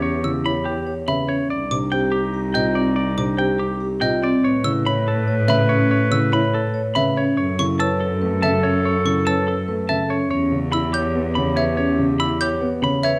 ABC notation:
X:1
M:7/8
L:1/8
Q:1/4=143
K:Edor
V:1 name="Xylophone"
z e' z3 e z | z d' z3 _e z | z d' z3 _e z | z e' z3 e z |
z e' z3 e z | z c' e' z2 e z | z c' e' z2 e z | z2 e' g' z2 e |
z2 e' g' z2 e |]
V:2 name="Clean electric guitar"
c z b G z b c | d z g G z g d | d z g G z g d | c z b A z b c |
c z b A z b c | c z a A z a c | c z a A z a c | c z b G z b c |
c z b G z b c |]
V:3 name="Clarinet"
G6 z | _E6- E- | _E6 z | B6- B- |
B6 z | A6- A- | A6 z | G6- G- |
G6 z |]
V:4 name="Vibraphone"
z E c z c B C | z D G z G =F =C | z D G z G =F =C | z E c z c B C |
z E c z c B C | z E B z B A C | z E B z B A C | C z E c z c B |
C z E c z c B |]
V:5 name="Grand piano" clef=bass
z C, E z2 C, z | z =C, =C z2 C, z | z =C, =C z2 C, z | z C, E z2 C, z |
z C, E z2 C, z | z C, C z A, C, z | z C, C z A, C, z | z C, E z B, C, z |
z C, E z B, C, z |]
V:6 name="Cello" clef=bass
E,,6- E,, | =C,,6- C,,- | =C,,6- C,, | A,,6- A,,- |
A,,6- A,, | F,,6- F,,- | F,,6- F,, | E,,6- E,,- |
E,,6- E,, |]